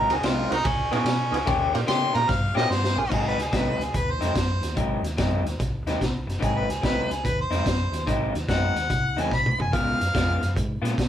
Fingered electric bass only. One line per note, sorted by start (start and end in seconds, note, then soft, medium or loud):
0.10 0.23 C#2 medium
0.23 0.49 C2 medium
0.51 0.63 C2 medium
0.65 0.90 C#2 loud
0.92 1.04 A#2 medium
1.04 1.30 B2 medium
1.32 1.45 C#2 medium
1.47 1.72 D#2 medium
1.75 1.87 A#2 loud
1.88 2.13 C#3 medium
2.15 2.28 A#2 medium
2.29 2.54 G2 loud
2.56 2.69 A#2 medium
2.70 2.95 G2 medium
2.96 3.10 A#1 medium
3.11 3.37 G#1 medium
3.37 3.51 C#2 loud
3.53 3.78 C2 medium
3.79 3.92 C#2 medium
3.94 4.19 D#2 loud
4.19 4.33 F2 medium
4.35 4.60 F#2 medium
4.61 4.74 D#2 medium
4.77 5.02 G#1 medium
5.02 5.16 D#2 loud
5.18 5.43 F#2 medium
5.43 5.57 D#2 medium
5.59 5.85 C2 loud
5.86 5.99 D#2 medium
6.01 6.26 C2 medium
6.27 6.40 F#1 medium
6.42 6.67 G#1 medium
6.69 6.82 C#2 medium
6.84 7.09 C2 loud
7.11 7.23 C#2 medium
7.25 7.50 D#2 loud
7.50 7.64 F2 medium
7.66 7.91 F#2 medium
7.92 8.05 D#2 medium
8.07 8.32 G#1 medium
8.34 8.47 D#2 medium
8.49 8.74 F#2 medium
8.75 8.88 D#2 medium
8.90 9.15 C2 loud
9.16 9.29 D#2 medium
9.31 9.57 C2 medium
9.57 9.75 F#1 medium
9.73 9.98 C#2 medium
10.00 10.13 F#2 medium
10.15 10.40 F2 medium
10.42 10.55 F#2 medium
10.57 10.81 G#2 loud
10.82 10.95 A#2 medium
10.98 11.08 B2 medium